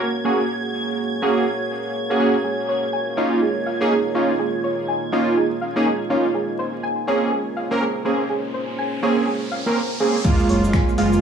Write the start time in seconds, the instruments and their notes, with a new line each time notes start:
Already playing: ambient pad A#3 F#4 G#4 C#5, string machine G#6
0.24 synth keys A#3 C#4 F#4 G#4
1.22 synth keys A#3 C#4 F#4 G#4
2.10 synth keys A#3 C#4 F#4 G#4
2.19 synth keys A#3 C#4 F#4 G#4
2.44 ambient pad D#4 F4, synth arpeggio sound G#4
2.69 synth arpeggio sound C#5
2.93 synth arpeggio sound G#5
3.17 synth keys A#3 C#4 D#4 F4, synth arpeggio sound D#5
3.42 synth arpeggio sound G#4
3.66 synth arpeggio sound F5
3.81 synth keys A#3 C#4 D#4 G#4
3.91 synth arpeggio sound G#4
4.15 synth keys A#3 C#4 D#4 F4, synth arpeggio sound C#5
4.39 synth arpeggio sound G#4, ambient pad D#5
4.64 synth arpeggio sound C#5
4.88 synth arpeggio sound G#5
5.12 synth keys A#3 C#4 D#4 F4, synth arpeggio sound D#5
5.37 synth arpeggio sound G#4
5.61 synth arpeggio sound F5
5.76 synth keys A#3 C#4 D#4 G#4
5.86 synth arpeggio sound G#4
6.10 synth keys A#3 C#4 D#4 F4, synth arpeggio sound C#5
6.34 ambient pad A#3 C#4 G#4 C5, synth arpeggio sound G#4, riser
6.59 synth arpeggio sound C5
6.83 synth arpeggio sound G#5
7.07 synth keys A#3 C4 C#4 G#4, synth arpeggio sound C#5
7.32 synth arpeggio sound G#4
7.57 synth arpeggio sound F5
7.71 synth keys A#3 C4 C#4 A#4
7.81 synth arpeggio sound G#4
8.05 synth keys A#3 C4 C#4 G#4, synth arpeggio sound C5
8.30 synth arpeggio sound G#4, ambient pad A#4
8.54 synth arpeggio sound C5
8.78 synth arpeggio sound G#5
9.02 synth keys A#3 C4 C#4 G#4, synth arpeggio sound C#5
9.27 synth arpeggio sound G#4
9.52 synth arpeggio sound F5
9.66 synth keys A#3 C4 C#4 A#4
9.76 synth arpeggio sound C5
10.00 synth keys A#3 C4 C#4 G#4, synth arpeggio sound G#4
10.24 synth keys G#3 A#3 F4, synth arpeggio sound G#4, kick, closed hi-hat, crash, sub drop, cabasa
10.40 closed hi-hat, cabasa
10.49 analog synth bass F#1, synth arpeggio sound C#5, closed hi-hat, open hi-hat
10.64 cabasa
10.73 synth arpeggio sound G#5, finger snap, kick, snare, closed hi-hat, cabasa
10.89 cabasa
10.98 analog synth bass F#1, synth keys G#3 A#3 F4, synth arpeggio sound F5, closed hi-hat, open hi-hat
11.13 closed hi-hat, cabasa